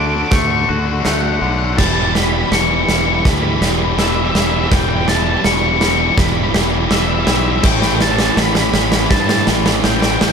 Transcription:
Already playing: D2 D3 A3 D4 F#4 D5
0.00 D3
0.06 D3 A3 D6
0.14 D3 A3 D6
0.22 D3 A3 D6
0.28 D2 D3 A3 D6, kick, snare
0.34 C#6
0.39 D3 A3 C#6
0.46 D3 A3
0.51 D3 A3 C#6
0.59 D3 A3 C#6
0.69 D2 D3 A3 F#4
0.77 D3 A3
0.85 D3 A3
0.92 D3 A3
1.00 D3 A3
1.05 D2 D3 A3 F#5, snare
1.13 D3 A3 F#5
1.21 D3 A3 F#5
1.28 D3 A3 F#5
1.34 F#5
1.39 B1 D3 A3 F#5
1.46 D3 A3
1.51 D3 A3 F#5
1.58 F#5
1.63 D3 A3 F#5
1.70 D3 A3 F#5
1.77 E1 E3 G3 E4 G4 A5, kick, snare, crash
1.85 E3 G3 A5
1.93 E3 G3 A5
2.00 E3 G3 A5
2.07 E3 G3
2.14 E3 G3 B5, snare
2.23 E3 G3 B5
2.31 E3 G3 B5
2.38 E3 G3 B5
2.47 E3 G3
2.52 E1 E3 G3 C#6, snare
2.60 E3 G3 C#6
2.68 E3 G3 C#6
2.74 C#6
2.78 E3 G3
2.83 E3 C#6
2.87 E1 G3 C#6, snare
2.93 E3 G3
2.98 E3 C#6
3.02 G3 C#6
3.08 E3 G3
3.13 E3 G3 C#6
3.20 E3 C#6
3.24 D2 G3 B5, kick, snare
3.31 E3 G3 B5
3.39 E3 G3 B5
3.47 E3 G3
3.52 E3 G3 B5
3.61 E1 E3 G3, snare
3.69 E3 G3
3.78 E3 G3
3.85 E3 G3
3.92 E3 G3
3.98 E1 E3 G3 E5, snare
4.07 E3 G3 E5
4.14 E3 G3 E5
4.21 E3 G3 E5
4.30 E3 G3 E5
4.35 E1 E5, snare
4.39 E3 G3
4.45 E3 G3 E5
4.51 E5
4.56 E3 G3 E5
4.62 E3 G3
4.67 E3 E5
4.71 E1 G3 G5, kick, snare
4.79 E3 G3 G5
4.87 E3 G3 G5
4.94 E3 G3 G5
5.02 E3 G3
5.08 E3 G3 A5, snare
5.15 E3 G3 A5
5.24 E3 G3 A5
5.31 E3 A5
5.35 G3 A5
5.40 E3 G3
5.44 E1 E3 C#6, snare
5.49 G3 C#6
5.55 E3 G3
5.60 E3 C#6
5.65 G3 C#6
5.71 E3 G3
5.75 E3 C#6
5.80 G3, snare
5.84 E3 G3 C#6
5.92 E3 C#6
5.96 G3 C#6
6.01 E3 G3
6.07 E3 G3 C#6
6.16 E1 E3 G3 B5, kick, snare
6.24 E3 G3 B5
6.32 E3 G3
6.36 B5
6.40 E3 G3 B5
6.47 E3 G3
6.54 E1 E3 G3, snare
6.63 E3 G3
6.71 E3 G3
6.78 E3 G3
6.87 E1 E3 G3
6.91 E3 E5, snare
6.96 G3 E5
7.01 E3 G3
7.07 E3 G3 E5
7.14 E3 E5
7.18 G3 E5
7.24 B1 E3 G3, snare
7.29 E3 E5
7.33 G3 E5
7.40 E3 G3
7.44 E3 E5
7.48 G3 E5
7.54 E3 G3
7.59 A2 E5
7.63 A1 E3 A3 C#5 G5, kick, snare, crash
7.70 A2 E3 G5
7.77 A2 E3 G5
7.82 A2, snare
7.87 E3 G5
7.94 A2 E3 G5
8.01 A2 E3 A5, snare
8.10 A2 E3 A5
8.16 A2 E3 A5, snare
8.25 A2 E3 A5
8.32 A2 E3 A5
8.37 A1 A2 E3 B5, snare
8.46 A2 E3 B5
8.54 A2 E3 B5, snare
8.62 A2 E3 B5
8.70 A1 A2 E3 B5, snare
8.77 A2 E3 B5
8.85 A2 E3 B5
8.92 A2 E3 B5, snare
8.99 A2 B5
9.04 E3
9.10 G2 A2 E3 A5, kick, snare
9.17 A2 E3 A5
9.24 A2 E3 A5
9.29 A2, snare
9.33 E3 A5
9.40 A2 E3
9.47 A1 A2 E3, snare
9.56 A2 E3
9.63 A2 E3, snare
9.72 A2 E3
9.80 A2 E3, snare
9.84 A1 A2 E3 G5
9.92 A2 E3 G5
9.99 A2 E3 G5, snare
10.08 A2 E3 G5
10.15 A2 E3 G5
10.21 A1 G5, snare
10.25 A2 E3

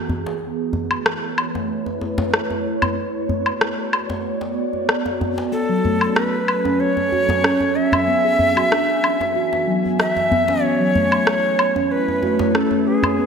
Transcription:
Already playing: E3 B3 F#4 G#4
0.09 djembe bass
0.26 djembe slap
0.42 A3 E4 B4 C#5
0.73 djembe bass
0.91 low woodblock
1.06 cross-stick
1.38 low woodblock
1.55 djembe tone
1.86 djembe tone
2.01 djembe tone
2.18 djembe slap, djembe bass
2.34 cross-stick
2.50 djembe tone
2.82 djembe bass, low woodblock
2.97 B3 F#4 D5
3.29 djembe bass
3.46 low woodblock
3.61 cross-stick
3.93 low woodblock
4.10 djembe slap, djembe tone
4.41 djembe slap
4.73 djembe tone
4.89 cross-stick
5.06 djembe slap, djembe tone
5.21 djembe bass
5.38 djembe slap
5.52 F#3 B3 C#4 A4 G#5
5.69 F#3
5.84 A3, djembe bass
6.01 low woodblock
6.16 B4, cross-stick
6.48 low woodblock
6.65 C#4, djembe tone
6.80 C#5
6.97 djembe tone
7.12 F#4, djembe tone
7.29 djembe slap, djembe bass
7.44 C#4, cross-stick
7.60 djembe tone
7.76 C#4 E5
7.92 djembe bass, low woodblock
8.08 E3 B3 F#4
8.25 G#4
8.39 djembe bass
8.57 F#4, low woodblock
8.72 D4, cross-stick
9.04 low woodblock
9.20 djembe slap, djembe tone
9.36 F#4
9.53 djembe slap
9.67 F#3
9.86 djembe tone
10.00 E5, cross-stick
10.16 djembe slap, djembe tone
10.31 B3, djembe bass
10.48 C#4, djembe slap
10.63 A3 B3 E4 B4 C#5
10.80 F#3
10.95 A3, djembe bass
11.12 low woodblock
11.27 cross-stick
11.59 low woodblock
11.76 C#4, djembe tone
11.91 B4
12.08 djembe tone
12.23 F#4, djembe tone
12.39 djembe slap, djembe bass
12.55 C#4 A4, cross-stick
12.71 djembe tone
12.87 C#4 G#4
13.03 djembe bass, low woodblock
13.19 B3

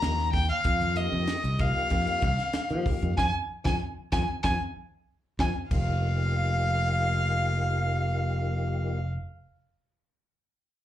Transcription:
Already playing: F3 A#3 D#4 G4 A#5
0.02 D#2, snare, closed hi-hat
0.19 snare
0.33 D#2 G5, kick, open hi-hat, high conga, low conga
0.49 F5, closed hi-hat
0.64 F2, kick, closed hi-hat
0.81 closed hi-hat, high conga
0.95 F3 A#3 D#4 G4 D#5, closed hi-hat
1.12 F2, high conga
1.27 snare, closed hi-hat
1.44 C2, closed hi-hat
1.58 F3 A#3 D#4 G4 F5, kick, closed hi-hat, low conga
1.90 F2, kick, closed hi-hat
2.07 closed hi-hat
2.22 C2, kick, closed hi-hat, high conga
2.38 snare, closed hi-hat
2.53 muted fingered electric bass stroke, snare, closed hi-hat
2.70 F3 A#3 D#4 G4, closed hi-hat
2.86 kick, open hi-hat, high conga, low conga
3.02 F2, closed hi-hat
3.16 F2 C4 D#4 F4 G#5, kick, snare, high conga
3.64 F2 C4 D#4 F4 G#5, kick, snare, high conga
4.12 F2 C4 D#4 F4 G#5, kick, snare, high conga
4.43 F2 C4 D#4 F4 G#5, kick, snare, high conga
5.39 F2 C4 D#4 F4 G#5, kick, snare, high conga
5.70 F1 F3 A#3 D#4 G4 F5, kick, crash, high conga

